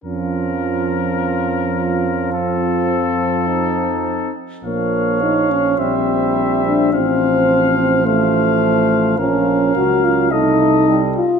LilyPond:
<<
  \new Staff \with { instrumentName = "Trumpet" } { \time 4/4 \key bes \minor \tempo 4 = 106 bes'1 | a'2.~ a'8 r8 | f''2 e''2 | f''2 f''2 |
f''2 ees''4. r8 | }
  \new Staff \with { instrumentName = "Flugelhorn" } { \time 4/4 \key bes \minor f'1~ | f'2 ees'4. r8 | des''2 c''2 | c''2 c''2 |
bes'2 a'4. r8 | }
  \new Staff \with { instrumentName = "French horn" } { \time 4/4 \key bes \minor des'1 | c'2.~ c'8 r8 | bes4 ees'8 des'8 c'4. d'8 | c'4. c'8 a2 |
des'4 ges'8 f'8 ees'4. f'8 | }
  \new Staff \with { instrumentName = "Trombone" } { \clef bass \time 4/4 \key bes \minor f1~ | f2.~ f8 r8 | f2 g2 | f2 f2 |
f4 ges4 a4 g8 r8 | }
  \new Staff \with { instrumentName = "Tuba" } { \clef bass \time 4/4 \key bes \minor f,1~ | f,2.~ f,8 r8 | bes,,2 bes,,2 | a,,1 |
bes,,4 des,4 c,4. r8 | }
>>